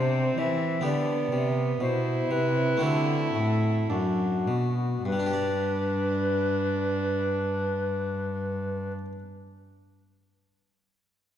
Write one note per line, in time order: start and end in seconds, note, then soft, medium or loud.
0.00 0.34 C3 medium
0.00 0.37 C3 medium
0.00 0.79 C4 soft
0.00 0.85 C4 medium
0.00 0.80 G4 soft
0.00 0.40 C5 loud
0.38 0.84 E3 medium
0.38 0.81 E3 medium
0.38 0.85 E5 medium
0.81 1.28 D3 medium
0.81 1.31 D3 medium
0.81 2.77 B3 soft
0.81 1.83 B3 medium
0.81 2.77 G4 medium
0.85 1.47 D5 medium
1.32 1.80 C3 medium
1.32 1.77 C3 soft
1.80 2.27 B2 medium
1.80 2.30 B2 medium
1.80 3.91 E4 medium
1.80 2.32 C5 medium
2.31 2.81 C3 medium
2.31 2.78 C3 soft
2.31 2.84 B4 medium
2.77 4.41 A3 soft
2.77 5.00 C4 soft
2.77 5.01 F#4 soft
2.82 3.31 D3 soft
2.82 3.34 D3 medium
2.82 3.90 A4 medium
3.35 3.89 A2 medium
3.35 3.86 A2 medium
3.90 4.43 F#2 soft
3.90 4.49 F#2 medium
3.90 4.47 D4 medium
3.90 5.04 F#4 medium
4.48 5.02 B2 soft
4.48 5.05 B2 medium
5.05 8.91 G2 soft
5.05 8.92 G2 medium
5.05 8.90 D4 medium
5.05 8.92 B4 medium
5.13 8.98 G3 soft
5.19 9.05 D4 soft
5.26 9.12 G4 soft
5.33 9.19 D5 soft